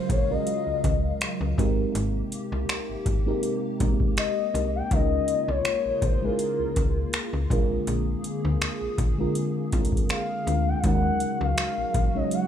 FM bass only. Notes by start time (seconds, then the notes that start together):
0.09 A#1
0.67 C#2
0.84 C#2
1.41 C#2
1.58 G#1
1.95 G#1
2.52 C2
2.89 G#1
3.06 G#1
3.80 A#1
4.54 C2
4.91 C#2
5.48 C2
5.85 A#1
6.02 A#1
6.59 C#2
6.76 C#2
7.33 C#2
7.50 A#1
7.87 A#1
8.45 D2
8.82 A#1
8.98 A#1
9.73 C2
10.47 D2
10.84 D#2
11.41 C#2
11.78 A#1
11.94 A#1